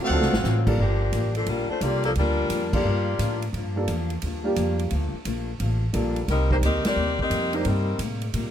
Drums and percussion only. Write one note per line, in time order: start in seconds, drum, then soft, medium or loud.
0.22 snare medium
0.33 snare loud
0.44 snare medium
0.44 hi-hat pedal medium
0.67 kick medium
0.67 crash medium
1.13 hi-hat pedal medium
1.13 ride medium
1.35 ride medium
1.46 ride medium
1.81 hi-hat pedal medium
1.81 ride medium
2.03 ride soft
2.15 ride medium
2.50 hi-hat pedal medium
2.50 ride medium
2.73 kick medium
2.73 crash medium
3.19 hi-hat pedal medium
3.19 ride medium
3.42 ride medium
3.54 ride medium
3.88 hi-hat pedal medium
3.88 ride medium
4.10 ride soft
4.22 ride medium
4.56 hi-hat pedal medium
4.56 ride medium
4.79 ride soft
4.90 ride medium
5.25 hi-hat pedal medium
5.25 ride medium
5.60 ride medium
5.94 hi-hat pedal medium
5.94 ride medium
6.16 ride soft
6.28 snare soft
6.28 ride medium
6.51 kick medium
6.63 hi-hat pedal medium
6.63 ride medium
6.85 snare medium
6.85 ride medium
7.19 kick medium
7.31 hi-hat pedal medium
7.31 ride medium
7.53 ride soft
7.65 ride medium
7.99 hi-hat pedal medium
7.99 ride medium
8.21 ride soft
8.34 ride medium